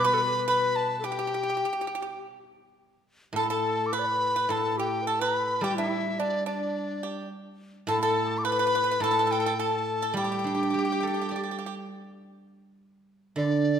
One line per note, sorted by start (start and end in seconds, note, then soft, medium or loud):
0.00 1.61 B2 medium
0.00 0.47 G3 medium
0.04 0.44 B4 medium
0.04 0.15 B4 loud
0.04 0.48 B5 loud
0.14 0.23 A4 medium
0.22 0.49 B4 medium
0.48 1.00 B4 medium
0.48 0.95 B4 medium
0.48 0.77 B5 medium
0.76 1.07 A5 medium
0.99 1.06 A4 medium
1.04 1.11 G4 medium
1.04 2.19 G4 medium
1.04 2.19 G5 medium
1.12 1.18 G4 medium
1.19 1.26 G4 medium
1.27 1.33 G4 soft
1.34 1.41 G4 soft
1.43 1.49 G4 soft
1.50 1.56 G4 medium
1.57 1.64 G4 soft
1.65 1.71 G4 soft
1.73 1.79 G4 soft
1.81 1.86 G4 soft
1.87 1.94 G4 soft
1.95 2.01 G4 medium
2.02 2.09 G4 soft
3.33 4.48 A2 soft
3.33 3.49 A4 medium
3.37 3.49 A5 medium
3.49 3.94 A4 medium
3.49 3.90 A4 medium
3.49 3.88 A5 medium
3.86 3.96 D6 medium
3.93 4.01 B4 medium
3.93 4.32 B4 medium
3.93 4.53 B5 medium
3.99 4.08 D5 medium
4.06 4.51 B4 medium
4.36 4.49 B4 medium
4.49 6.18 A2 soft
4.49 4.79 A4 medium
4.49 4.76 A4 medium
4.49 4.79 A5 medium
4.77 5.04 G4 medium
4.77 5.05 G4 medium
4.77 5.09 G5 medium
5.02 5.21 A4 medium
5.02 5.07 B4 medium
5.07 5.20 A4 medium
5.07 5.23 A5 medium
5.20 5.64 B4 medium
5.20 5.60 B4 medium
5.20 5.65 B5 medium
5.61 7.31 G3 medium
5.61 5.78 G4 medium
5.61 5.76 G4 medium
5.61 5.77 G5 medium
5.76 6.21 E4 medium
5.76 6.17 E4 medium
5.76 6.21 E5 medium
6.19 6.47 D4 medium
6.19 6.45 D4 medium
6.19 6.46 D5 medium
6.46 6.99 D4 medium
6.46 7.28 D4 medium
6.46 7.27 D5 medium
7.03 7.29 G4 medium
7.87 8.99 A2 medium
7.87 8.01 A4 medium
7.87 8.02 A4 medium
7.87 8.01 A5 medium
8.02 8.47 A4 medium
8.02 8.28 A4 medium
8.02 8.39 A5 medium
8.28 8.42 G4 medium
8.38 8.46 D6 medium
8.44 8.51 B4 medium
8.44 9.03 B4 medium
8.44 9.03 B5 loud
8.52 8.58 B4 medium
8.59 8.66 B4 medium
8.67 8.74 B4 medium
8.75 8.82 B4 medium
8.84 8.90 B4 medium
8.91 8.97 B4 medium
9.00 10.73 A2 medium
9.00 9.57 A4 medium
9.00 9.10 A4 medium
9.00 9.33 A5 medium
9.11 9.17 A4 medium
9.19 9.25 A4 medium
9.27 9.31 A4 soft
9.31 9.39 A4 medium
9.31 9.61 G5 medium
9.40 9.45 A4 soft
9.46 9.53 A4 medium
9.57 10.16 A4 medium
9.57 9.99 A4 medium
9.57 10.16 A5 medium
10.02 10.15 A4 medium
10.13 11.90 G3 medium
10.13 11.90 G4 medium
10.13 10.23 G4 medium
10.13 11.88 G5 medium
10.24 10.31 G4 soft
10.32 10.38 G4 soft
10.39 10.46 G4 soft
10.44 11.61 D4 soft
10.44 10.53 G4 soft
10.55 10.61 G4 soft
10.63 10.69 G4 soft
10.70 10.77 G4 soft
10.70 11.91 G4 soft
10.79 10.84 G4 soft
10.85 10.91 G4 soft
10.92 10.99 G4 soft
11.00 11.06 G4 soft
11.00 12.21 A4 soft
11.07 11.13 G4 soft
11.14 11.20 G4 soft
11.21 11.28 G4 soft
11.29 11.35 G4 soft
11.29 12.50 D5 soft
11.36 11.42 G4 soft
11.44 11.50 G4 soft
11.51 11.57 G4 soft
11.59 11.65 G4 soft
11.66 11.74 G4 soft
13.36 13.80 D3 medium
13.36 13.80 D5 medium